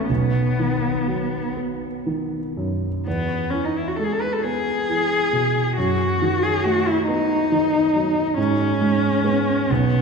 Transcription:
0.00 0.12 A1 soft
0.00 0.12 F#3 soft
0.00 0.11 A3 soft
0.00 0.11 C#4 soft
0.09 3.02 B1 soft
0.09 1.54 B3 medium
0.60 1.38 D#3 soft
1.08 1.86 F#3 soft
1.57 2.37 B3 soft
2.06 2.87 D#3 soft
2.57 3.06 F#2 soft
3.06 5.73 E2 soft
3.06 3.51 B3 medium
3.50 4.26 E3 soft
3.50 3.66 C#4 soft
3.65 3.79 D#4 soft
3.78 3.89 E4 soft
3.88 3.97 F#4 soft
3.96 4.70 G#3 soft
3.96 4.05 A4 soft
4.03 4.14 G#4 soft
4.12 4.22 A4 soft
4.21 4.34 B4 soft
4.32 4.45 A4 soft
4.43 5.14 B3 soft
4.43 5.76 G#4 medium
4.89 5.59 E3 soft
5.33 5.77 B2 soft
5.76 8.34 F#2 soft
5.76 6.44 F#4 medium
6.22 6.91 D#3 soft
6.42 6.65 G#4 medium
6.64 7.34 A3 soft
6.64 6.88 F#4 medium
6.87 7.06 E4 medium
7.07 7.78 B3 soft
7.07 8.34 D#4 medium
7.52 8.21 D#3 soft
7.96 8.38 F#3 soft
8.38 9.66 G#2 soft
8.38 9.73 C#4 medium
8.81 9.22 G#3 soft
9.24 9.65 G#3 soft
9.24 9.66 B3 soft
9.70 10.02 B1 soft
9.70 10.02 B3 medium

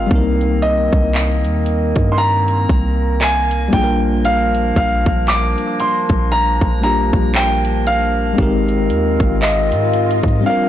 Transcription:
0.00 3.56 C4 medium
0.00 0.66 F5 medium
0.07 3.67 G3 medium
0.07 3.68 C4 medium
0.11 0.89 C2 loud
0.11 3.56 D#3 medium
0.11 3.69 A#3 medium
0.11 8.35 A#3 medium
0.11 3.70 D#4 medium
0.11 10.69 A#4 medium
0.11 kick loud
0.11 closed hi-hat medium
0.15 3.71 A#4 medium
0.41 closed hi-hat soft
0.62 2.16 D#5 medium
0.62 closed hi-hat medium
0.93 1.46 C2 loud
0.93 kick medium
0.93 closed hi-hat soft
1.15 clap loud
1.15 closed hi-hat medium
1.44 1.94 D#2 medium
1.44 closed hi-hat soft
1.66 closed hi-hat medium
1.96 2.67 G2 medium
1.96 kick medium
1.96 closed hi-hat soft
2.12 2.18 C6 medium
2.18 3.24 A#5 loud
2.18 closed hi-hat medium
2.48 closed hi-hat medium
2.69 3.69 C2 medium
2.69 kick medium
2.69 closed hi-hat medium
3.21 3.75 G#5 loud
3.21 clap loud
3.21 closed hi-hat medium
3.51 closed hi-hat medium
3.68 6.77 G3 medium
3.68 6.78 A#3 medium
3.73 4.72 A#1 loud
3.73 8.35 F3 medium
3.73 6.79 D4 medium
3.73 8.35 D4 medium
3.73 6.80 F4 medium
3.73 4.21 G5 loud
3.73 kick loud
3.73 closed hi-hat medium
3.77 3.83 G#4 medium
3.84 6.85 A#4 medium
4.25 4.75 F5 loud
4.25 closed hi-hat medium
4.55 closed hi-hat soft
4.76 5.05 A#1 loud
4.76 5.30 F5 medium
4.76 kick medium
4.76 closed hi-hat medium
5.06 5.56 A#1 loud
5.06 kick medium
5.06 closed hi-hat soft
5.28 5.81 D6 loud
5.28 clap loud
5.28 closed hi-hat medium
5.58 closed hi-hat soft
5.80 6.28 C6 medium
5.80 closed hi-hat medium
6.09 6.59 A#1 loud
6.09 kick medium
6.09 closed hi-hat soft
6.32 6.82 A#5 loud
6.32 closed hi-hat medium
6.61 7.11 A#1 loud
6.61 kick medium
6.61 closed hi-hat soft
6.81 8.37 G3 soft
6.81 8.38 A#3 soft
6.81 8.38 D4 soft
6.81 8.39 F4 soft
6.81 7.37 A#5 medium
6.81 closed hi-hat medium
6.85 8.39 G4 medium
7.13 8.34 A#1 medium
7.13 kick medium
7.34 7.83 G5 loud
7.34 clap loud
7.34 closed hi-hat medium
7.65 closed hi-hat medium
7.87 9.47 F5 loud
7.87 closed hi-hat medium
8.34 10.39 G#3 medium
8.34 10.40 C4 medium
8.38 8.92 G#1 loud
8.38 10.28 D#3 medium
8.38 10.28 G#3 medium
8.38 10.28 C4 medium
8.38 10.41 D#4 medium
8.38 10.42 G4 medium
8.38 kick loud
8.38 closed hi-hat medium
8.43 10.43 A#4 medium
8.68 closed hi-hat soft
8.90 9.19 D#2 loud
8.90 closed hi-hat medium
9.20 9.73 G#1 loud
9.20 kick medium
9.20 closed hi-hat soft
9.42 10.42 D#5 medium
9.42 clap loud
9.42 closed hi-hat medium
9.72 10.21 G#2 medium
9.72 closed hi-hat soft
9.93 closed hi-hat medium
10.11 closed hi-hat soft
10.23 10.44 G#2 loud
10.23 kick medium
10.28 closed hi-hat soft
10.41 10.69 G3 medium
10.41 10.69 C4 medium
10.45 10.69 F3 medium
10.45 10.69 A#3 medium
10.45 10.69 C4 medium
10.45 10.69 D4 medium
10.45 10.69 F4 medium
10.45 10.69 F5 medium
10.50 10.69 A#4 medium

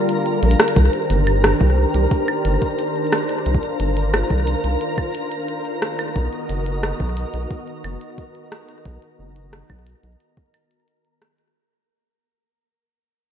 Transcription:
0.00 0.72 D3 medium
0.00 0.72 G3 medium
0.00 0.72 F4 medium
0.00 0.72 A#4 medium
0.00 0.75 A#4 medium
0.00 0.75 A#5 medium
0.09 closed hi-hat medium
0.26 closed hi-hat soft
0.43 0.55 A#1 medium
0.43 closed hi-hat medium
0.51 closed hi-hat medium
0.60 cross-stick loud
0.60 closed hi-hat medium
0.68 closed hi-hat medium
0.76 0.89 C2 loud
0.76 6.12 D#3 medium
0.76 6.12 D4 medium
0.76 3.43 G4 medium
0.76 11.56 A#4 medium
0.76 6.12 C5 medium
0.76 11.56 A#5 medium
0.76 kick loud
0.76 closed hi-hat medium
0.93 closed hi-hat soft
1.10 1.54 G1 medium
1.10 closed hi-hat loud
1.27 closed hi-hat medium
1.27 claves medium
1.44 cross-stick loud
1.44 closed hi-hat medium
1.61 1.86 C2 medium
1.61 kick loud
1.61 closed hi-hat soft
1.94 2.07 C2 medium
1.94 closed hi-hat medium
2.11 kick loud
2.11 closed hi-hat medium
2.28 closed hi-hat soft
2.28 claves medium
2.45 2.58 G1 loud
2.45 closed hi-hat medium
2.62 kick medium
2.62 closed hi-hat medium
2.79 closed hi-hat medium
2.96 closed hi-hat soft
3.07 closed hi-hat soft
3.12 cross-stick loud
3.12 closed hi-hat loud
3.12 claves medium
3.18 closed hi-hat soft
3.29 closed hi-hat medium
3.46 3.59 C2 loud
3.46 6.13 F4 medium
3.46 closed hi-hat medium
3.55 kick loud
3.63 closed hi-hat soft
3.80 4.23 G1 loud
3.80 closed hi-hat medium
3.97 closed hi-hat medium
4.14 cross-stick loud
4.14 closed hi-hat medium
4.14 claves medium
4.30 4.55 C2 medium
4.30 kick loud
4.30 closed hi-hat soft
4.47 closed hi-hat loud
4.64 4.77 C2 medium
4.64 closed hi-hat medium
4.81 closed hi-hat medium
4.98 kick loud
4.98 closed hi-hat soft
4.98 claves medium
5.15 closed hi-hat loud
5.32 closed hi-hat medium
5.48 closed hi-hat medium
5.65 closed hi-hat soft
5.82 cross-stick loud
5.82 closed hi-hat medium
5.99 closed hi-hat medium
5.99 claves medium
6.16 6.28 B1 medium
6.16 11.51 D#3 medium
6.16 11.51 B3 medium
6.16 11.51 F#4 medium
6.16 11.51 D#5 medium
6.16 kick loud
6.16 closed hi-hat medium
6.33 closed hi-hat soft
6.49 6.93 F#1 medium
6.49 closed hi-hat medium
6.66 closed hi-hat medium
6.83 cross-stick loud
6.83 closed hi-hat medium
6.83 claves soft
7.00 7.25 B1 medium
7.00 kick loud
7.00 closed hi-hat soft
7.17 closed hi-hat medium
7.34 7.46 B1 medium
7.34 closed hi-hat medium
7.51 kick loud
7.51 closed hi-hat soft
7.68 closed hi-hat soft
7.84 7.97 F#1 medium
7.84 closed hi-hat medium
7.84 claves medium
8.01 closed hi-hat medium
8.18 kick medium
8.18 closed hi-hat soft
8.35 closed hi-hat soft
8.52 cross-stick loud
8.52 closed hi-hat medium
8.69 closed hi-hat medium
8.85 8.98 B1 medium
8.85 kick loud
8.85 closed hi-hat medium
9.02 closed hi-hat soft
9.19 9.63 F#1 medium
9.36 closed hi-hat soft
9.53 cross-stick loud
9.53 closed hi-hat soft
9.70 9.95 B1 medium
9.70 kick loud
9.70 closed hi-hat soft
9.70 claves medium
9.87 closed hi-hat medium
10.03 10.16 B1 medium
10.03 closed hi-hat medium
10.20 closed hi-hat medium
10.37 kick loud
10.37 closed hi-hat soft
10.54 closed hi-hat medium
10.54 claves soft
10.71 closed hi-hat medium
10.88 closed hi-hat soft
11.05 closed hi-hat soft
11.22 cross-stick loud
11.22 closed hi-hat medium
11.38 closed hi-hat soft

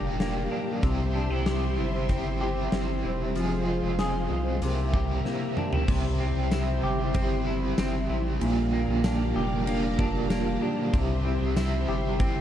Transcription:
0.00 0.47 F1 medium
0.00 0.83 A#2 medium
0.00 0.83 F3 soft
0.00 0.19 A#3 medium
0.00 0.84 A#3 soft
0.00 0.50 D4 medium
0.00 0.83 F4 medium
0.00 0.87 G4 medium
0.00 1.46 G4 medium
0.00 3.32 G4 medium
0.00 0.80 D5 medium
0.00 0.80 F5 medium
0.00 0.81 A#5 medium
0.20 0.89 A#3 medium
0.20 snare loud
0.20 closed hi-hat medium
0.52 0.89 D4 medium
0.82 1.28 C2 loud
0.82 2.09 C3 medium
0.82 3.36 C3 medium
0.82 2.07 G3 medium
0.82 2.09 C4 medium
0.82 5.84 C5 medium
0.82 3.33 E5 medium
0.82 3.33 C6 medium
0.82 kick loud
0.82 closed hi-hat medium
0.86 2.10 E4 medium
0.86 2.11 G4 medium
1.15 1.30 D4 medium
1.30 1.79 C2 loud
1.30 1.77 E4 soft
1.46 2.40 G4 medium
1.46 snare loud
1.46 closed hi-hat medium
1.77 2.68 G1 medium
1.77 3.03 E4 medium
2.08 2.40 G3 medium
2.08 2.72 C4 medium
2.08 2.41 C4 medium
2.08 2.41 E4 medium
2.08 2.39 G4 medium
2.08 kick medium
2.08 closed hi-hat medium
2.40 3.37 C4 soft
2.40 3.36 E4 soft
2.40 3.35 G4 medium
2.40 3.42 G4 medium
2.72 3.02 G1 loud
2.72 5.25 C4 medium
2.72 snare loud
2.72 closed hi-hat medium
3.04 3.34 E1 medium
3.04 3.42 E4 medium
3.34 3.81 F1 loud
3.34 4.61 F2 medium
3.34 4.62 C3 medium
3.34 4.68 F3 medium
3.34 4.61 F3 medium
3.34 4.63 G#3 medium
3.34 4.61 G#4 medium
3.34 4.61 F5 medium
3.34 4.61 C6 medium
3.34 closed hi-hat medium
3.39 4.64 C4 medium
3.39 4.64 G#4 medium
3.67 4.30 F4 medium
3.83 4.28 F1 loud
3.99 4.68 G#4 medium
3.99 snare loud
3.99 closed hi-hat medium
4.30 4.60 C2 medium
4.30 4.68 F4 medium
4.61 5.22 C2 loud
4.61 5.87 C3 medium
4.61 4.93 G3 medium
4.61 4.94 A#3 medium
4.61 4.94 E4 medium
4.61 5.87 G4 medium
4.61 5.87 E5 medium
4.61 5.87 A#5 medium
4.61 closed hi-hat medium
4.65 4.92 G4 medium
4.93 5.89 A#3 soft
4.93 5.91 E4 soft
4.93 5.92 G4 medium
4.93 6.83 G4 medium
4.93 kick medium
5.25 5.95 A#3 medium
5.25 snare medium
5.57 5.73 D4 medium
5.57 mid tom medium
5.73 5.95 E4 soft
5.73 floor tom medium
5.87 6.33 C2 medium
5.87 7.12 C3 medium
5.87 8.41 C3 medium
5.87 7.14 G3 medium
5.87 7.15 C4 medium
5.87 8.38 G4 medium
5.87 8.38 C5 medium
5.87 8.38 E5 medium
5.87 8.38 C6 loud
5.87 kick loud
5.87 crash loud
5.91 7.16 E4 medium
5.91 7.18 G4 loud
6.20 7.14 C4 medium
6.36 6.81 C2 loud
6.51 7.45 E4 medium
6.51 snare loud
6.51 ride medium
6.51 tambourine medium
6.83 7.74 G1 medium
6.83 9.36 G4 medium
7.13 8.40 C3 loud
7.13 8.42 G3 medium
7.13 7.77 C4 medium
7.13 8.42 C4 loud
7.13 kick medium
7.13 ride medium
7.17 8.42 E4 loud
7.17 8.44 G4 medium
7.47 8.09 E4 medium
7.78 8.08 G1 medium
7.78 8.48 C4 medium
7.78 snare loud
7.78 ride medium
7.78 tambourine medium
8.09 8.39 A1 medium
8.09 8.47 E4 medium
8.39 8.86 A#1 loud
8.39 9.64 A#2 medium
8.39 10.94 A#2 medium
8.39 9.66 D3 medium
8.39 9.67 F3 medium
8.39 9.68 A#3 medium
8.39 12.41 G4 medium
8.39 10.91 D5 medium
8.39 10.91 F5 medium
8.39 10.91 A#5 loud
8.39 ride medium
8.44 9.69 F4 medium
8.44 9.71 G4 loud
8.73 9.66 A#3 medium
8.88 9.33 A#1 loud
9.04 9.98 D4 medium
9.04 snare loud
9.04 ride medium
9.04 tambourine medium
9.36 10.58 F1 medium
9.36 11.88 G4 medium
9.66 10.93 A#2 medium
9.66 10.93 D3 medium
9.66 10.94 F3 loud
9.66 10.30 A#3 medium
9.66 10.94 A#3 loud
9.66 ride medium
9.70 10.95 F4 medium
9.70 12.41 G4 loud
9.99 10.61 D4 medium
9.99 kick loud
10.30 11.00 A#3 medium
10.30 snare loud
10.30 ride medium
10.30 tambourine medium
10.62 11.00 D4 medium
10.93 11.39 C2 loud
10.93 11.55 C3 medium
10.93 12.41 C3 medium
10.93 11.56 G3 medium
10.93 11.58 C4 medium
10.93 11.58 E4 medium
10.93 12.41 C5 medium
10.93 12.41 E5 medium
10.93 12.41 C6 loud
10.93 kick loud
10.93 ride medium
11.25 12.19 C4 medium
11.41 11.86 C2 loud
11.56 12.18 C3 medium
11.56 12.18 G3 medium
11.56 12.20 C4 medium
11.56 12.41 E4 medium
11.56 12.20 E4 medium
11.56 snare loud
11.56 ride medium
11.56 tambourine medium
11.89 12.41 G1 medium
11.89 12.41 G4 medium
12.19 12.41 C3 medium
12.19 12.41 G3 medium
12.19 12.41 C4 medium
12.19 12.41 C4 loud
12.19 12.41 E4 medium
12.19 kick medium
12.19 ride medium

